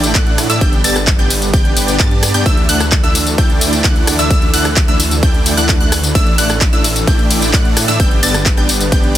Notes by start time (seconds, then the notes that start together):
Already playing: A1 E3 A3 D4 E4 D5 G5 G6
0.04 closed hi-hat, tambourine
0.15 A2 A3 D4 E4 D5 F#5 F#6, kick, clap, closed hi-hat, ride, tambourine
0.27 closed hi-hat
0.38 cross-stick, open hi-hat, ride, tambourine
0.50 A2 A3 D4 E4 D5 E5 E6, closed hi-hat, tambourine
0.61 G1 G3 B3 D4 G4 D5 G5 G6, kick, closed hi-hat, ride, tambourine
0.73 closed hi-hat
0.84 G1 B3 D4 G4 D5 A5 A6, open hi-hat, ride, tambourine
0.96 cross-stick, closed hi-hat, tambourine
1.07 kick, clap, closed hi-hat, ride, tambourine
1.19 G1 B3 D4 G4 D5 G5 G6, closed hi-hat
1.30 open hi-hat, ride, tambourine
1.42 closed hi-hat, tambourine
1.53 G1 B3 D4 G4 D5 G5 G6, kick, closed hi-hat, ride, tambourine
1.65 closed hi-hat
1.77 open hi-hat, ride, tambourine
1.88 closed hi-hat, tambourine
2.00 G2 B3 D4 G4 D5 A5 A6, kick, clap, closed hi-hat, ride, tambourine
2.11 closed hi-hat
2.23 cross-stick, open hi-hat, ride, tambourine
2.34 G2 B3 D4 G4 D5 G5 G6, closed hi-hat, tambourine
2.46 D2 E3 A3 D4 E4 D5 E5 E6, kick, closed hi-hat, ride, tambourine
2.57 closed hi-hat
2.69 D2 A3 D4 E4 D5 F#5 F#6, open hi-hat, ride, tambourine
2.80 cross-stick, closed hi-hat, tambourine
2.92 kick, clap, closed hi-hat, ride, tambourine
3.04 D2 A3 D4 E4 D5 E5 E6, closed hi-hat
3.15 open hi-hat, ride, tambourine
3.27 closed hi-hat, tambourine
3.38 D2 A3 D4 E4 D5 G5 G6, kick, closed hi-hat, ride, tambourine
3.50 closed hi-hat
3.61 open hi-hat, ride, tambourine
3.73 closed hi-hat, tambourine
3.84 D2 A3 D4 E4 D5 F#5 F#6, kick, clap, closed hi-hat, ride, tambourine
3.96 closed hi-hat
4.07 cross-stick, open hi-hat, ride, tambourine
4.19 D2 A3 D4 E4 D5 E5 E6, closed hi-hat, tambourine
4.30 D2 A3 D4 E4 D5 E5 E6, kick, closed hi-hat, ride, tambourine
4.42 closed hi-hat
4.54 D2 A3 D4 E4 D5 F#5 F#6, open hi-hat, ride, tambourine
4.65 cross-stick, closed hi-hat, tambourine
4.77 kick, clap, closed hi-hat, ride, tambourine
4.88 D2 A3 D4 E4 D5 E5 E6, closed hi-hat
5.00 open hi-hat, ride, tambourine
5.11 closed hi-hat, tambourine
5.23 D2 A3 D4 E4 D5 G5 G6, kick, closed hi-hat, ride, tambourine
5.34 closed hi-hat
5.46 open hi-hat, ride, tambourine
5.57 D2 A3 D4 E4 D5 F#5 F#6, closed hi-hat, tambourine
5.69 kick, clap, closed hi-hat, ride, tambourine
5.80 D2 A3 D4 E4 D5 F#5 F#6, closed hi-hat
5.92 cross-stick, open hi-hat, ride, tambourine
6.04 closed hi-hat, tambourine
6.15 A1 A3 D4 E4 D5 E5 E6, kick, closed hi-hat, ride, tambourine
6.27 closed hi-hat
6.38 A1 A3 D4 E4 D5 F#5 F#6, open hi-hat, ride, tambourine
6.50 cross-stick, closed hi-hat, tambourine
6.61 kick, clap, closed hi-hat, ride, tambourine
6.73 A1 A3 D4 E4 D5 E5 E6, closed hi-hat
6.84 open hi-hat, ride, tambourine
6.96 closed hi-hat, tambourine
7.07 A1 A3 D4 E4 D5 G5 G6, kick, closed hi-hat, ride, tambourine
7.19 closed hi-hat
7.31 open hi-hat, ride, tambourine
7.42 closed hi-hat, tambourine
7.54 A2 A3 D4 E4 D5 F#5 F#6, kick, clap, closed hi-hat, ride, tambourine
7.65 closed hi-hat
7.77 cross-stick, open hi-hat, ride, tambourine
7.88 A2 A3 D4 E4 D5 E5 E6, closed hi-hat, tambourine
8.00 G1 G3 B3 D4 G4 D5 G5 G6, kick, closed hi-hat, ride, tambourine
8.11 closed hi-hat
8.23 G1 B3 D4 G4 D5 A5 A6, open hi-hat, ride, tambourine
8.34 cross-stick, closed hi-hat, tambourine
8.46 kick, clap, closed hi-hat, ride, tambourine
8.57 G1 B3 D4 G4 D5 G5 G6, closed hi-hat
8.69 open hi-hat, ride, tambourine
8.81 closed hi-hat, tambourine
8.92 G1 B3 D4 G4 D5 G5 G6, kick, closed hi-hat, ride, tambourine
9.04 closed hi-hat